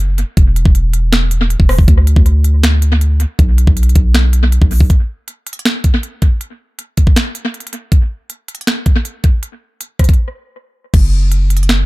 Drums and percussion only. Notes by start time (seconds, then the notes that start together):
0.18 closed hi-hat
0.37 kick, closed hi-hat
0.56 closed hi-hat
0.65 kick
0.75 closed hi-hat
0.93 closed hi-hat
1.13 finger snap, snare, closed hi-hat
1.31 closed hi-hat
1.50 closed hi-hat
1.60 kick
1.69 cross-stick, open hi-hat
1.79 kick
1.88 kick, closed hi-hat
2.07 closed hi-hat
2.16 kick
2.26 closed hi-hat
2.44 closed hi-hat
2.63 finger snap, snare, closed hi-hat
2.82 closed hi-hat
3.01 closed hi-hat
3.20 closed hi-hat
3.39 kick, closed hi-hat
3.58 closed hi-hat
3.67 kick
3.77 closed hi-hat
3.83 closed hi-hat
3.89 closed hi-hat
3.95 kick, closed hi-hat
4.14 finger snap, snare, closed hi-hat
4.33 closed hi-hat
4.52 closed hi-hat
4.62 kick
4.71 open hi-hat
4.80 kick
4.90 kick, closed hi-hat
5.28 closed hi-hat
5.47 closed hi-hat
5.53 closed hi-hat
5.59 closed hi-hat
5.65 finger snap, snare, closed hi-hat
5.84 kick, closed hi-hat
6.03 closed hi-hat
6.22 kick, closed hi-hat
6.41 closed hi-hat
6.79 closed hi-hat
6.97 kick, closed hi-hat
7.07 kick
7.16 finger snap, snare, closed hi-hat
7.35 closed hi-hat
7.54 closed hi-hat
7.60 closed hi-hat
7.67 closed hi-hat
7.73 closed hi-hat
7.92 kick, closed hi-hat
8.30 closed hi-hat
8.48 closed hi-hat
8.55 closed hi-hat
8.61 closed hi-hat
8.67 finger snap, snare, closed hi-hat
8.86 kick, closed hi-hat
9.05 closed hi-hat
9.24 kick, closed hi-hat
9.43 closed hi-hat
9.81 closed hi-hat
9.99 kick, cross-stick, closed hi-hat
10.04 closed hi-hat
10.09 kick, closed hi-hat
10.14 closed hi-hat
10.94 kick, closed hi-hat, crash
11.32 closed hi-hat
11.50 closed hi-hat
11.57 closed hi-hat
11.63 closed hi-hat
11.69 finger snap, snare, closed hi-hat